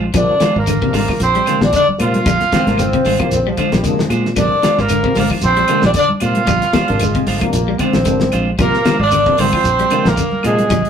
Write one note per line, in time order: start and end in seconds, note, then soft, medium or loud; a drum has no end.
0.00 0.14 A#1 medium
0.14 0.25 A#1 medium
0.14 0.36 C3 medium
0.14 0.36 F3 medium
0.14 0.29 G3 medium
0.14 0.36 A#3 medium
0.14 0.36 D4 medium
0.14 0.54 D4 medium
0.14 0.54 D5 medium
0.14 kick loud
0.14 closed hi-hat medium
0.14 low conga medium
0.14 claves medium
0.14 shekere medium
0.40 0.56 F3 medium
0.40 0.58 G#3 medium
0.40 0.58 D4 medium
0.40 0.58 F4 medium
0.40 0.59 C5 medium
0.40 muted fingered electric bass stroke soft
0.40 snare medium
0.40 closed hi-hat medium
0.40 high conga loud
0.40 shekere soft
0.56 0.85 G#1 loud
0.56 0.93 A#3 medium
0.56 0.92 A#4 medium
0.67 0.76 D3 medium
0.67 closed hi-hat medium
0.67 claves medium
0.67 shekere medium
0.81 1.02 C3 medium
0.81 0.89 C3 medium
0.81 1.02 F3 medium
0.81 1.02 A#3 medium
0.81 1.02 D4 medium
0.81 kick medium
0.93 1.04 G#1 medium
0.93 1.03 D3 medium
0.93 1.10 G#3 medium
0.93 1.20 A#3 medium
0.93 1.11 D4 medium
0.93 1.11 F4 medium
0.93 1.20 A#4 medium
0.93 1.11 C5 medium
0.93 snare soft
0.93 open hi-hat medium
0.93 high conga medium
0.93 low conga medium
0.93 shekere soft
1.08 1.24 F3 medium
1.08 kick medium
1.08 snare soft
1.08 claves medium
1.20 1.40 A#1 medium
1.20 1.60 C4 medium
1.20 1.60 C5 loud
1.20 closed hi-hat medium
1.20 shekere medium
1.35 1.42 G3 medium
1.35 closed hi-hat soft
1.46 1.64 C3 medium
1.46 1.62 D3 medium
1.46 1.64 F3 medium
1.46 1.63 G#3 medium
1.46 1.64 A#3 medium
1.46 1.64 D4 medium
1.46 1.64 F4 medium
1.46 1.64 C5 medium
1.46 snare soft
1.46 closed hi-hat medium
1.46 claves medium
1.46 shekere soft
1.61 1.70 A#1 loud
1.61 1.73 D4 medium
1.61 snare medium
1.61 high conga loud
1.65 1.74 D5 medium
1.73 1.89 D3 medium
1.73 1.86 D4 medium
1.73 kick medium
1.73 closed hi-hat medium
1.73 shekere medium
1.77 1.88 D5 loud
1.88 muted fingered electric bass stroke soft
1.88 high conga medium
1.98 2.27 A#2 medium
1.98 2.20 C3 medium
1.98 2.20 F3 medium
1.98 2.16 G#3 soft
1.98 2.20 A#3 medium
1.98 2.17 D4 medium
1.98 2.20 F4 medium
1.98 2.17 F4 medium
1.98 3.02 F4 medium
1.98 2.17 C5 medium
1.98 closed hi-hat medium
1.98 claves medium
1.98 shekere soft
2.03 3.03 F5 loud
2.14 closed hi-hat soft
2.14 high conga medium
2.26 2.37 A#1 loud
2.26 2.42 G3 medium
2.26 kick loud
2.26 snare soft
2.26 closed hi-hat medium
2.26 low conga medium
2.26 claves medium
2.26 shekere medium
2.41 snare soft
2.41 closed hi-hat soft
2.52 2.68 F3 medium
2.52 2.67 G#3 medium
2.52 2.66 C4 loud
2.52 2.67 D4 medium
2.52 2.67 F4 medium
2.52 2.67 C5 medium
2.52 muted fingered electric bass stroke soft
2.52 kick medium
2.52 snare medium
2.52 closed hi-hat medium
2.52 high conga medium
2.52 shekere soft
2.67 2.95 G#1 medium
2.67 2.82 C3 medium
2.67 2.82 F3 medium
2.67 2.82 A#3 medium
2.67 2.79 A#3 loud
2.67 2.82 D4 medium
2.67 2.83 D4 soft
2.67 2.82 F4 medium
2.67 2.82 C5 soft
2.67 snare soft
2.67 closed hi-hat soft
2.67 high conga medium
2.77 2.87 D3 medium
2.77 3.19 C4 loud
2.77 closed hi-hat medium
2.77 claves medium
2.77 shekere medium
2.93 3.01 C3 medium
2.93 kick medium
2.93 closed hi-hat soft
3.05 3.16 G#1 medium
3.05 3.14 D3 medium
3.05 3.20 G#3 medium
3.05 3.20 F4 medium
3.05 3.19 C5 medium
3.05 open hi-hat medium
3.05 high conga medium
3.05 low conga medium
3.05 shekere soft
3.19 3.39 C3 loud
3.19 3.40 F3 medium
3.19 3.35 F3 medium
3.19 3.31 A#3 medium
3.19 3.39 A#3 medium
3.19 3.39 C4 loud
3.19 3.35 D4 soft
3.19 3.34 C5 soft
3.19 muted clean electric guitar stroke soft
3.19 kick medium
3.19 closed hi-hat soft
3.19 low conga medium
3.19 claves medium
3.30 3.51 A#1 medium
3.30 3.44 C4 medium
3.30 snare soft
3.30 closed hi-hat medium
3.30 shekere medium
3.47 3.73 F3 medium
3.47 3.53 G3 medium
3.58 3.73 D3 medium
3.58 3.75 G#3 medium
3.58 3.75 D4 medium
3.58 3.75 F4 medium
3.58 3.75 C5 medium
3.58 kick medium
3.58 closed hi-hat soft
3.58 claves medium
3.58 shekere soft
3.71 3.81 A#1 loud
3.71 3.83 G3 medium
3.71 snare medium
3.71 closed hi-hat soft
3.71 high conga loud
3.83 4.01 C3 medium
3.83 4.00 D3 medium
3.83 4.02 F3 medium
3.83 4.25 G#3 medium
3.83 4.01 A#3 medium
3.83 4.01 D4 loud
3.83 kick medium
3.83 closed hi-hat medium
3.83 shekere medium
3.98 muted fingered electric bass stroke soft
3.98 snare medium
3.98 high conga medium
4.09 4.38 A#2 medium
4.09 4.27 G#3 medium
4.09 4.27 D4 medium
4.09 4.28 C5 medium
4.09 closed hi-hat soft
4.09 claves medium
4.09 shekere soft
4.25 snare soft
4.36 4.48 A#1 loud
4.36 4.58 C3 medium
4.36 4.58 F3 medium
4.36 4.52 G3 loud
4.36 4.58 A#3 medium
4.36 4.58 D4 medium
4.36 4.81 D4 medium
4.36 4.82 D5 loud
4.36 kick loud
4.36 closed hi-hat medium
4.36 low conga medium
4.36 claves medium
4.36 shekere medium
4.62 4.79 F3 medium
4.62 4.78 G#3 medium
4.62 4.78 D4 medium
4.62 4.77 F4 medium
4.62 4.77 C5 medium
4.62 muted fingered electric bass stroke soft
4.62 snare medium
4.62 closed hi-hat medium
4.62 high conga medium
4.62 shekere soft
4.78 5.07 G#1 loud
4.78 5.17 A#3 medium
4.78 4.93 D4 soft
4.78 4.93 F4 soft
4.78 5.17 A#4 medium
4.78 4.93 C5 soft
4.78 snare soft
4.89 4.99 D3 medium
4.89 closed hi-hat medium
4.89 claves medium
4.89 shekere medium
5.03 5.24 C3 medium
5.03 5.12 C3 medium
5.03 5.24 F3 medium
5.03 5.24 A#3 medium
5.03 5.24 C4 medium
5.03 kick medium
5.15 5.27 G#1 medium
5.15 5.25 D3 medium
5.15 5.31 G#3 medium
5.15 5.30 D4 medium
5.15 5.30 F4 medium
5.15 5.29 C5 medium
5.15 snare soft
5.15 open hi-hat medium
5.15 high conga medium
5.15 low conga medium
5.15 shekere soft
5.19 5.30 A#3 medium
5.19 5.30 A#4 medium
5.30 5.46 F3 medium
5.30 5.46 D4 soft
5.30 5.45 F4 soft
5.30 5.45 C5 soft
5.30 kick medium
5.30 claves medium
5.42 5.63 A#1 medium
5.42 5.82 C4 medium
5.42 5.81 C5 loud
5.42 snare soft
5.42 closed hi-hat medium
5.42 shekere medium
5.57 5.64 G3 medium
5.57 closed hi-hat soft
5.68 5.87 C3 medium
5.68 5.84 D3 medium
5.68 5.86 F3 medium
5.68 5.85 G#3 medium
5.68 5.86 A#3 medium
5.68 5.86 D4 medium
5.68 5.87 D4 medium
5.68 5.86 F4 medium
5.68 5.86 C5 medium
5.68 closed hi-hat medium
5.68 claves medium
5.68 shekere soft
5.82 5.92 A#1 loud
5.82 5.90 D4 medium
5.82 5.90 D5 medium
5.82 snare medium
5.82 high conga loud
5.94 6.10 D3 medium
5.94 6.08 D5 loud
5.94 kick medium
5.94 closed hi-hat medium
5.94 shekere medium
5.98 6.09 D4 medium
6.09 muted fingered electric bass stroke soft
6.09 high conga medium
6.20 6.49 A#2 medium
6.20 6.43 C3 medium
6.20 6.43 F3 medium
6.20 6.38 G#3 medium
6.20 6.43 A#3 medium
6.20 6.43 C4 medium
6.20 6.38 D4 medium
6.20 6.38 F4 medium
6.20 6.39 C5 medium
6.20 7.24 F5 loud
6.20 closed hi-hat medium
6.20 claves medium
6.20 shekere soft
6.25 7.25 F4 medium
6.35 closed hi-hat soft
6.35 high conga medium
6.47 6.59 A#1 medium
6.47 6.63 G3 medium
6.47 kick loud
6.47 closed hi-hat medium
6.47 low conga medium
6.47 claves medium
6.47 shekere medium
6.62 snare soft
6.62 closed hi-hat soft
6.73 6.89 F3 medium
6.73 6.85 G3 medium
6.73 6.89 G#3 medium
6.73 6.88 D4 medium
6.73 6.87 F4 medium
6.73 6.87 C5 medium
6.73 muted fingered electric bass stroke soft
6.73 kick medium
6.73 snare medium
6.73 closed hi-hat medium
6.73 high conga medium
6.73 shekere soft
6.88 7.18 G#1 loud
6.88 7.04 C3 medium
6.88 7.04 F3 medium
6.88 7.04 A#3 medium
6.88 7.04 D4 medium
6.88 7.04 D4 soft
6.88 7.03 F4 soft
6.88 7.03 C5 medium
6.88 closed hi-hat soft
6.99 7.09 D3 medium
6.99 7.38 G#3 medium
6.99 closed hi-hat medium
6.99 claves medium
6.99 shekere medium
7.15 7.22 C3 medium
7.15 kick medium
7.15 closed hi-hat soft
7.26 7.38 G#1 medium
7.26 7.44 G#3 medium
7.26 7.44 D4 medium
7.26 7.44 F4 medium
7.26 7.45 C5 medium
7.26 open hi-hat medium
7.26 high conga medium
7.26 low conga medium
7.26 shekere soft
7.39 7.62 C3 medium
7.39 7.57 F3 medium
7.39 7.63 F3 medium
7.39 7.51 A#3 medium
7.39 7.62 A#3 medium
7.39 7.62 D4 loud
7.39 muted fingered electric bass stroke soft
7.39 kick medium
7.39 closed hi-hat soft
7.39 claves medium
7.52 7.73 A#1 medium
7.52 7.77 A#3 medium
7.52 closed hi-hat medium
7.52 shekere medium
7.68 7.75 G3 medium
7.78 7.95 D3 medium
7.78 7.97 G#3 medium
7.78 8.47 C4 loud
7.78 7.97 D4 medium
7.78 7.97 F4 medium
7.78 7.97 C5 medium
7.78 kick medium
7.78 closed hi-hat medium
7.78 claves medium
7.78 shekere soft
7.93 8.04 A#1 medium
7.93 snare medium
7.93 closed hi-hat soft
7.93 high conga loud
8.05 8.30 G#1 medium
8.05 8.24 C3 medium
8.05 8.21 D3 medium
8.05 8.24 F3 medium
8.05 8.24 A#3 medium
8.05 8.24 D4 loud
8.05 kick medium
8.05 closed hi-hat medium
8.05 shekere medium
8.20 snare medium
8.20 high conga medium
8.32 8.58 A#1 medium
8.32 8.50 G#3 medium
8.32 8.50 D4 medium
8.32 8.50 F4 medium
8.32 8.50 C5 medium
8.32 closed hi-hat soft
8.32 claves medium
8.32 shekere soft
8.59 8.70 A#1 medium
8.59 8.81 C3 medium
8.59 8.81 F3 medium
8.59 8.74 G3 medium
8.59 8.81 A#3 medium
8.59 8.98 A#3 medium
8.59 8.81 F4 medium
8.59 8.98 A#4 loud
8.59 kick loud
8.59 closed hi-hat medium
8.59 low conga medium
8.59 claves medium
8.59 shekere medium
8.74 snare soft
8.85 9.01 F3 medium
8.85 9.02 G#3 medium
8.85 9.02 D4 medium
8.85 9.03 F4 medium
8.85 9.03 C5 medium
8.85 muted fingered electric bass stroke soft
8.85 snare medium
8.85 closed hi-hat medium
8.85 high conga medium
8.85 shekere soft
8.99 9.29 G#1 loud
8.99 9.42 D4 medium
8.99 9.41 D5 loud
9.11 9.21 D3 medium
9.11 snare soft
9.11 closed hi-hat medium
9.11 claves medium
9.11 shekere medium
9.26 9.34 C3 medium
9.26 9.47 C3 medium
9.26 9.47 F3 medium
9.26 9.47 A#3 medium
9.26 9.47 D4 medium
9.26 kick medium
9.38 9.50 G#1 medium
9.38 9.47 D3 medium
9.38 9.53 G#3 medium
9.38 10.10 C4 medium
9.38 9.52 D4 medium
9.38 9.52 F4 medium
9.38 9.51 C5 medium
9.38 10.09 C5 loud
9.38 open hi-hat medium
9.38 high conga medium
9.38 low conga medium
9.38 shekere soft
9.52 9.69 F3 medium
9.52 9.68 D4 soft
9.52 9.68 F4 soft
9.52 9.67 C5 soft
9.52 muted fingered electric bass stroke soft
9.52 kick medium
9.52 claves medium
9.64 9.84 A#1 medium
9.64 closed hi-hat medium
9.64 shekere medium
9.79 9.87 G3 medium
9.79 closed hi-hat soft
9.90 10.09 C3 medium
9.90 10.07 D3 medium
9.90 10.09 F3 medium
9.90 10.08 G#3 medium
9.90 10.09 A#3 medium
9.90 10.09 D4 medium
9.90 10.08 D4 medium
9.90 10.08 F4 medium
9.90 10.09 C5 medium
9.90 closed hi-hat medium
9.90 claves medium
9.90 shekere soft
10.05 10.15 A#1 loud
10.05 10.45 A#3 medium
10.05 10.45 A#4 medium
10.05 snare medium
10.05 high conga loud
10.17 10.33 D3 medium
10.17 kick medium
10.17 closed hi-hat medium
10.17 shekere medium
10.31 muted fingered electric bass stroke soft
10.31 high conga medium
10.43 10.72 A#2 medium
10.43 10.65 C3 medium
10.43 10.66 F3 medium
10.43 10.61 G#3 medium
10.43 10.90 G#3 medium
10.43 10.65 A#3 medium
10.43 10.61 D4 medium
10.43 10.66 D4 medium
10.43 10.61 F4 medium
10.43 10.90 G#4 medium
10.43 10.61 C5 medium
10.43 closed hi-hat medium
10.43 claves medium
10.43 shekere soft
10.58 closed hi-hat soft
10.58 high conga medium
10.70 10.82 A#1 loud
10.70 10.86 G3 loud
10.70 kick medium
10.70 closed hi-hat medium
10.70 low conga medium
10.70 claves medium
10.70 shekere loud
10.85 closed hi-hat soft